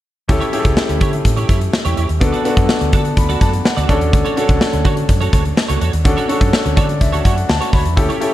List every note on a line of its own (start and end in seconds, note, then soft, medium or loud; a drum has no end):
0.28 0.38 D2 medium
0.28 0.45 C#4 medium
0.28 0.45 E4 medium
0.28 0.45 G4 medium
0.28 0.46 A4 medium
0.28 muted clean electric guitar stroke soft
0.28 kick loud
0.28 closed hi-hat medium
0.41 0.52 E4 medium
0.41 0.52 G4 medium
0.41 0.53 C#5 medium
0.41 closed hi-hat soft
0.52 1.18 C#4 medium
0.52 1.18 E4 medium
0.52 0.65 E4 medium
0.52 1.18 G4 medium
0.52 0.65 G4 medium
0.52 0.59 G#4 medium
0.52 0.64 C#5 medium
0.52 closed hi-hat medium
0.59 1.21 A4 medium
0.65 0.74 C#2 medium
0.65 muted clean electric guitar stroke soft
0.65 kick medium
0.65 closed hi-hat medium
0.77 muted clean electric guitar stroke soft
0.77 snare loud
0.89 0.98 D2 medium
0.89 muted clean electric guitar stroke soft
0.89 closed hi-hat soft
1.01 1.19 D3 medium
1.01 1.16 E4 medium
1.01 1.13 G4 medium
1.01 1.12 C#5 medium
1.01 kick loud
1.01 closed hi-hat medium
1.13 muted clean electric guitar stroke soft
1.13 closed hi-hat soft
1.25 1.43 A2 medium
1.25 muted clean electric guitar stroke soft
1.25 kick medium
1.25 closed hi-hat medium
1.37 1.47 E4 medium
1.37 1.48 G4 medium
1.37 1.49 C#5 medium
1.37 closed hi-hat medium
1.49 1.67 F#2 medium
1.49 1.60 E4 medium
1.49 1.61 G4 medium
1.49 1.59 C#5 medium
1.49 kick medium
1.49 closed hi-hat medium
1.61 muted clean electric guitar stroke soft
1.61 closed hi-hat soft
1.73 muted clean electric guitar stroke soft
1.73 snare loud
1.85 1.94 E2 medium
1.85 1.96 E4 medium
1.85 1.96 G4 medium
1.85 1.97 C#5 medium
1.85 closed hi-hat medium
1.97 2.06 E2 medium
1.97 2.08 E4 medium
1.97 2.09 G4 medium
1.97 2.08 C#5 medium
1.97 closed hi-hat medium
2.09 2.18 D#2 medium
2.09 muted clean electric guitar stroke soft
2.09 closed hi-hat soft
2.20 2.30 D2 medium
2.20 2.37 B3 medium
2.20 2.37 D4 medium
2.20 2.37 F#4 medium
2.20 2.38 A4 medium
2.20 muted clean electric guitar stroke soft
2.20 kick loud
2.20 closed hi-hat medium
2.33 2.43 F#4 medium
2.33 2.44 A4 medium
2.33 2.45 D5 medium
2.33 closed hi-hat soft
2.45 3.10 B3 medium
2.45 3.10 D4 medium
2.45 2.56 F#4 medium
2.45 3.10 F#4 medium
2.45 2.57 A4 medium
2.45 3.10 A4 medium
2.45 2.56 D5 medium
2.45 closed hi-hat medium
2.57 2.66 F#2 medium
2.57 kick medium
2.57 closed hi-hat medium
2.69 muted clean electric guitar stroke soft
2.69 snare loud
2.81 2.90 D2 medium
2.81 muted clean electric guitar stroke medium
2.81 closed hi-hat soft
2.93 3.11 D3 medium
2.93 3.08 F#4 medium
2.93 3.05 A4 medium
2.93 3.04 D5 medium
2.93 3.16 A5 medium
2.93 kick medium
2.93 closed hi-hat medium
3.05 muted clean electric guitar stroke soft
3.05 closed hi-hat soft
3.17 3.35 D2 medium
3.17 3.39 B5 medium
3.17 muted clean electric guitar stroke soft
3.17 kick medium
3.17 closed hi-hat medium
3.29 3.40 F#4 medium
3.29 3.40 A4 medium
3.29 3.41 D5 medium
3.29 closed hi-hat medium
3.41 3.59 F#2 medium
3.41 3.53 F#4 medium
3.41 3.53 A4 medium
3.41 3.52 D5 medium
3.41 3.63 A5 medium
3.41 kick medium
3.41 closed hi-hat medium
3.53 muted clean electric guitar stroke soft
3.53 closed hi-hat soft
3.65 3.87 F#5 medium
3.65 muted clean electric guitar stroke soft
3.65 snare loud
3.77 3.86 D2 medium
3.77 3.88 F#4 medium
3.77 3.88 A4 medium
3.77 3.90 D5 medium
3.77 closed hi-hat medium
3.88 3.98 D2 medium
3.88 4.27 C#4 medium
3.88 4.28 D4 medium
3.88 4.01 F#4 medium
3.88 4.28 F#4 medium
3.88 4.01 A4 medium
3.88 4.28 A4 loud
3.88 4.00 C#5 medium
3.88 4.11 D5 medium
3.88 kick medium
3.88 closed hi-hat medium
4.01 4.10 D#2 medium
4.01 closed hi-hat medium
4.13 4.22 D2 loud
4.13 muted clean electric guitar stroke soft
4.13 kick loud
4.13 closed hi-hat medium
4.25 4.36 F#4 medium
4.25 4.36 A4 medium
4.25 4.37 C#5 medium
4.25 closed hi-hat soft
4.37 5.02 C#4 medium
4.37 5.02 D4 medium
4.37 4.48 F#4 medium
4.37 5.02 F#4 medium
4.37 4.49 A4 medium
4.37 5.02 A4 medium
4.37 4.48 C#5 medium
4.37 closed hi-hat medium
4.49 4.58 C#2 medium
4.49 muted clean electric guitar stroke soft
4.49 kick medium
4.49 closed hi-hat soft
4.61 muted clean electric guitar stroke soft
4.61 snare loud
4.73 4.82 D2 loud
4.73 muted clean electric guitar stroke soft
4.73 closed hi-hat soft
4.85 5.03 D3 loud
4.85 5.00 F#4 medium
4.85 4.97 A4 medium
4.85 4.96 C#5 medium
4.85 kick medium
4.85 closed hi-hat medium
4.97 muted clean electric guitar stroke soft
4.97 closed hi-hat soft
5.09 5.27 F#2 loud
5.09 muted clean electric guitar stroke soft
5.09 kick medium
5.09 closed hi-hat medium
5.21 5.31 F#4 medium
5.21 5.32 A4 medium
5.21 5.33 C#5 medium
5.21 closed hi-hat medium
5.32 5.51 D2 medium
5.32 5.44 F#4 medium
5.32 5.44 A4 medium
5.32 5.43 C#5 medium
5.32 kick medium
5.32 closed hi-hat medium
5.45 muted clean electric guitar stroke soft
5.45 closed hi-hat soft
5.56 muted clean electric guitar stroke soft
5.56 snare loud
5.68 5.78 C#2 medium
5.68 5.79 F#4 medium
5.68 5.80 A4 medium
5.68 5.81 C#5 medium
5.68 closed hi-hat medium
5.81 5.90 E2 medium
5.81 5.92 F#4 medium
5.81 5.93 A4 medium
5.81 5.92 C#5 medium
5.81 closed hi-hat medium
5.93 6.02 D#2 medium
5.93 muted clean electric guitar stroke soft
5.93 closed hi-hat soft
6.04 6.14 D2 medium
6.04 6.21 C#4 medium
6.04 6.21 D4 medium
6.04 6.21 F#4 medium
6.04 6.22 A4 medium
6.04 muted clean electric guitar stroke soft
6.04 kick loud
6.04 closed hi-hat medium
6.17 6.27 F#4 medium
6.17 6.28 A4 medium
6.17 6.29 C#5 medium
6.17 closed hi-hat soft
6.28 6.94 C#4 medium
6.28 6.94 D4 medium
6.28 6.40 F#4 medium
6.28 6.94 F#4 medium
6.28 6.94 A4 medium
6.28 6.41 A4 medium
6.28 6.39 C#5 medium
6.28 closed hi-hat medium
6.41 6.50 F#2 medium
6.41 muted clean electric guitar stroke soft
6.41 kick medium
6.41 closed hi-hat soft
6.53 muted clean electric guitar stroke soft
6.53 snare loud
6.65 6.74 D2 medium
6.65 muted clean electric guitar stroke soft
6.65 closed hi-hat soft
6.76 7.03 D3 medium
6.76 6.92 F#4 medium
6.76 6.89 A4 medium
6.76 6.88 C#5 medium
6.76 6.99 D5 medium
6.76 kick medium
6.76 closed hi-hat medium
6.89 muted clean electric guitar stroke soft
6.89 closed hi-hat soft
7.01 7.19 D2 medium
7.01 7.23 E5 medium
7.01 muted clean electric guitar stroke soft
7.01 kick medium
7.01 closed hi-hat medium
7.12 7.23 F#4 medium
7.12 7.24 A4 medium
7.12 7.25 C#5 medium
7.12 closed hi-hat medium
7.25 7.43 F#2 medium
7.25 7.36 F#4 medium
7.25 7.37 A4 medium
7.25 7.36 C#5 medium
7.25 7.47 F#5 medium
7.25 kick medium
7.25 closed hi-hat medium
7.37 muted clean electric guitar stroke soft
7.37 closed hi-hat soft
7.49 7.58 D2 medium
7.49 7.71 A5 medium
7.49 muted clean electric guitar stroke soft
7.49 snare loud
7.61 7.72 F#4 medium
7.61 7.72 A4 medium
7.61 7.73 C#5 medium
7.61 closed hi-hat medium
7.73 7.82 D2 medium
7.73 7.85 F#4 medium
7.73 7.85 A4 medium
7.73 7.84 C#5 medium
7.73 7.95 B5 medium
7.73 kick medium
7.73 open hi-hat medium
7.85 7.94 E2 medium
7.85 muted clean electric guitar stroke soft
7.85 closed hi-hat soft
7.96 8.06 D2 loud
7.96 8.13 C#4 medium
7.96 8.13 E4 medium
7.96 8.13 G4 medium
7.96 8.14 A4 medium
7.96 muted clean electric guitar stroke soft
7.96 kick loud
7.96 closed hi-hat medium
8.09 8.20 E4 medium
8.09 8.20 G4 medium
8.09 8.21 C#5 medium
8.09 closed hi-hat soft
8.20 8.34 C#4 medium
8.20 8.34 E4 medium
8.20 8.33 E4 medium
8.20 8.34 G4 medium
8.20 8.33 G4 medium
8.20 8.34 A4 medium
8.20 8.32 C#5 medium
8.20 closed hi-hat medium